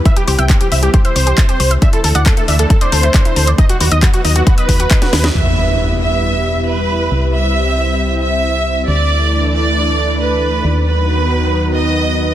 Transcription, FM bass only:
\new Staff \with { instrumentName = "FM bass" } { \clef bass \time 4/4 \key e \minor \tempo 4 = 136 r8 c,16 c,8 r16 c,8 r8 c,8 r8 c,8 | r8 d,16 d,8 r16 d,8 r8 d,8 r8 d,8 | r8 dis,16 dis,8 r16 dis,8 r8 dis,8 r8 dis,8 | e,1 |
c,1 | d,1 | dis,1 | }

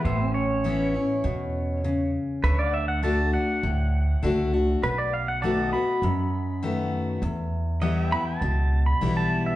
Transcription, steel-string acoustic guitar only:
\new Staff \with { instrumentName = "Steel-string acoustic guitar" } { \time 4/4 \key d \major \tempo 4 = 100 << { r4 <e b cis' e'>8 <cis' e'>8 r2 | r4 <d a d' fis'>8 <d' fis'>8 r4 <d a d' fis'>8 <d' fis'>8 | r4 <dis a b fis'>8 <b fis'>8 r4 <dis a b fis'>4 | r4 <e g b e'>8 <b e'>8 r4 <e g b e'>4 | } \\ { a,2 b,4 cis4 | d2 a,2 | b,2 fis,2 | e,2 b,2 | } >> }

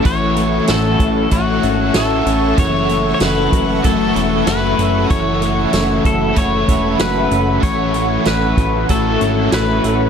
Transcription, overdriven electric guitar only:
\new Staff \with { instrumentName = "Overdriven electric guitar" } { \clef bass \time 4/4 \key a \major \tempo 4 = 95 <a, fis cis' e'>2 <fis cis' e'>4 <a, fis cis' e'>4 | <fis, cis e a e'>2 <fis, cis e a e'>4 <cis e a e'>4 | <fis, cis e a e'>2 <fis, cis e a e'>2 | <a, fis cis' e'>2 <fis cis' e'>2 | }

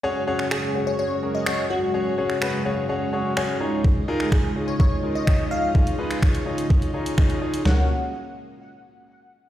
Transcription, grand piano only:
\new Staff \with { instrumentName = "Grand piano" } { \time 4/4 \key fis \major \tempo 4 = 126 << { r1 | r4. eis''8 fis''4 gis''8 ais''8 | r1 | r2 r8 ais''8 dis''4 |
r1 | } \\ { <cis' fis' gis' cis''>8 <cis' fis' gis' cis''>8 <cis' fis' gis' cis''>8 <cis' fis' gis' cis''>8 <cis' fis' gis' cis''>8 <cis' fis' gis' ais'>8 <cis' fis' gis' cis''>8 <cis' fis' gis' cis''>8 | <cis' fis' gis' cis''>8 <cis' fis' gis' cis''>8 <cis' fis' gis' b'>8 <cis' fis' gis' cis''>8 <cis' fis' gis' cis''>8 <cis' fis' gis' cis''>8 <cis' fis' gis' cis''>8 <dis' eis' gis' cis''>8~ | <dis' eis' gis' cis''>8 <dis' eis' gis' ais'>8 cis''8 <dis' eis' gis' cis''>8 <dis' eis' gis' cis''>8 <dis' eis' gis' ais'>8 <dis' eis' gis' cis''>8 <dis' eis' gis' cis''>8 | <dis' eis' gis' cis''>8 <dis' eis' gis' b'>8 <dis' eis' gis' cis''>8 <dis' eis' gis' cis''>8 <dis' eis' gis' cis''>8 <dis' eis' gis' cis''>8 <dis' eis' gis' cis''>8 <dis' eis' gis' cis''>8 |
<cis' fis' ais' cis''>8 r2. r8 | } >> }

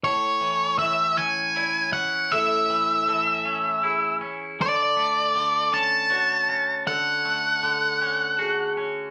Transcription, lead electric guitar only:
\new Staff \with { instrumentName = "Lead electric guitar" } { \time 6/8 \key a \major \tempo 4. = 53 cis''4 e''8 gis''4 fis''8 | e''2~ e''8 r8 | d''4. a''4. | fis''2~ fis''8 r8 | }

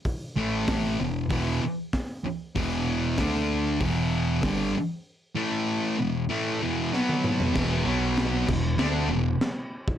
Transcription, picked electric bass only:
\new Staff \with { instrumentName = "Picked electric bass" } { \clef bass \time 4/4 \key a \major \tempo 4 = 96 r8 a,,4 e,,8 e,,8 r4. | e,,4 d,4 e,,4 g,,8 r8 | r1 | e,,8 b,,4 e,,8 d,8 e,,8 r4 | }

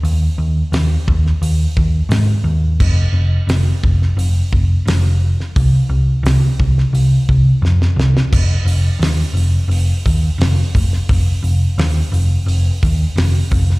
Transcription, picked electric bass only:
\new Staff \with { instrumentName = "Picked electric bass" } { \clef bass \time 4/4 \key ees \mixolydian \tempo 4 = 87 ees,8 ees,8 ees,8 ees,8 ees,8 ees,8 aes,8 ees,8 | f,,8 f,,8 f,,8 f,,8 f,,8 f,,8 f,,4 | c,8 c,8 c,8 c,8 c,8 c,8 f,8 c,8 | f,,8 f,,8 ees,8 f,,8 f,,8 ees,8 f,,8 f,,8 |
f,,8 f,,8 ees,8 f,,8 f,,8 ees,8 f,,8 f,,8 | }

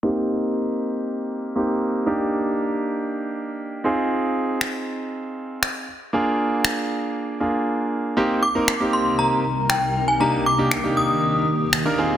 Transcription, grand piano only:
\new Staff \with { instrumentName = "Grand piano" } { \time 4/4 \key c \minor \tempo 4 = 118 <bes c' ees' g'>2. <bes c' ees' g'>4 | <bes d' ees' g'>2.~ <bes d' ees' g'>8 <c' ees' f' aes'>8~ | <c' ees' f' aes'>2.~ <c' ees' f' aes'>8 r8 | <bes d' f' aes'>2~ <bes d' f' aes'>8 <bes d' f' aes'>4. |
<bes c' ees' g'>8 r16 <bes c' ees' bes'>16 r16 <bes c' ees' g'>4~ <bes c' ees' g'>16 r4. | <bes d' ees' g'>8 r16 <bes d' ees' g'>16 r16 <bes d' ees' g'>4~ <bes d' ees' g'>16 r8. <bes d' ees' bes'>16 <c' ees' f' aes'>8 | }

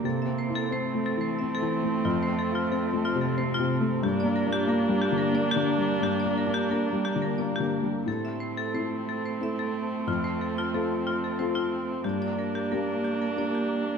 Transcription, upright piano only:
\new Staff \with { instrumentName = "Upright piano" } { \time 3/4 \key g \dorian \tempo 4 = 90 \tuplet 3/2 { c8 c'8 e'8 c'8 a8 e8 c'8 e8 a8 } | \tuplet 3/2 { f,8 c'8 f'8 c'8 a8 c8 c'8 c8 a8 } | \tuplet 3/2 { g,8 bes8 d'8 bes8 g8 d8 bes8 d8 g8 } | \tuplet 3/2 { g,8 bes8 d'8 bes8 g8 d8 bes8 d8 g8 } |
a,4 <c' e' a'>4 <c' e' a'>4 | f,4 <c' f' a'>4 <c' f' a'>4 | g,4 <bes d' g'>4 <bes d' g'>4 | }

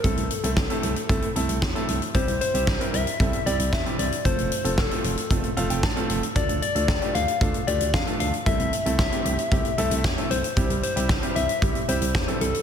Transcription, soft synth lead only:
\new Staff \with { instrumentName = "Soft synth lead" } { \time 4/4 \key a \phrygian \tempo 4 = 114 a'2.~ a'8 r8 | c''8 c''4 e''4 d''8 e''8 d''8 | c''4 a'2~ a'8 r8 | d''8 d''4 f''4 d''8 f''8 f''8 |
e''4 e''2~ e''8 c''8~ | c''8 c''4 e''4 c''4 a'8 | }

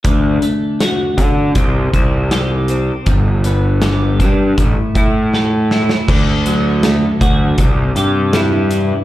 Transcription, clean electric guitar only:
\new Staff \with { instrumentName = "Clean electric guitar" } { \time 4/4 \key d \dorian \tempo 4 = 80 d8 a8 fis'8 d'8 c8 c'8 g'8 c'8 | g,8 b8 g'8 d'8 a,8 e'8 a'8 e'8 | d8 fis8 a8 fis'8 c8 g'8 e'8 e8 | }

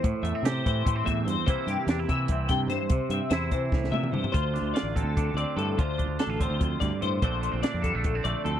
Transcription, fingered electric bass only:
\new Staff \with { instrumentName = "Fingered electric bass" } { \clef bass \time 7/8 \key d \minor \tempo 4 = 146 a,16 r16 e,16 r16 c8 a,8 a,8 a,8 g,16 r16 | c,16 r16 g,16 r16 e,8 c8 c,8 c8 g,16 r16 | c,16 r16 g,16 r16 e,8 c8 c,8 c8 g,16 r16 | d,8. d,16 r16 a,,8 d,8. d,16 r16 g,8 |
d,8. d,16 r16 a,,8 d,8. d,16 r16 g,8 | bes,,8. bes,,16 r16 f,8 bes,,8. bes,,16 r16 d,8 | }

